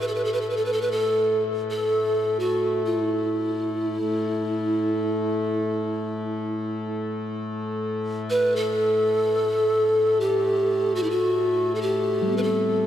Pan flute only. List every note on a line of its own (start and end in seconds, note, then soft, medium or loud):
0.01 0.09 B4 medium
0.08 0.16 A4 medium
0.15 0.26 B4 medium
0.25 0.35 A4 medium
0.33 0.43 B4 medium
0.41 0.51 A4 medium
0.50 0.58 B4 medium
0.57 0.66 A4 medium
0.65 0.74 B4 medium
0.73 0.83 A4 medium
0.81 0.93 B4 medium
0.91 1.42 A4 medium
1.70 2.41 A4 medium
2.40 2.85 F#4 medium
2.85 6.86 E4 medium
8.30 8.57 B4 medium
8.56 10.22 A4 medium
10.20 10.97 G4 medium
10.95 11.05 F#4 medium
11.03 11.12 E4 medium
11.10 11.77 F#4 medium
11.75 11.83 A4 soft
11.82 12.39 G4 medium
12.37 12.44 B4 medium
12.43 12.87 A4 medium